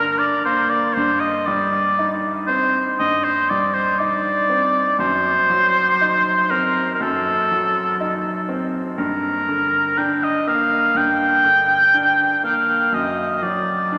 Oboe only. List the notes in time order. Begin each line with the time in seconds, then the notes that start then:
Already playing: A#4
0.19 D5
0.45 C5
0.69 D5
0.94 C5
1.20 D#5
1.46 D5
2.47 C5
2.99 D#5
3.24 C5
3.50 D5
3.74 C5
3.99 D5
5.00 C5
6.51 A#4
6.95 A#4
7.02 A4
8.98 A#4
9.98 G5
10.23 D#5
10.48 F5
10.97 G5
12.44 F5
12.94 D#5
13.43 D5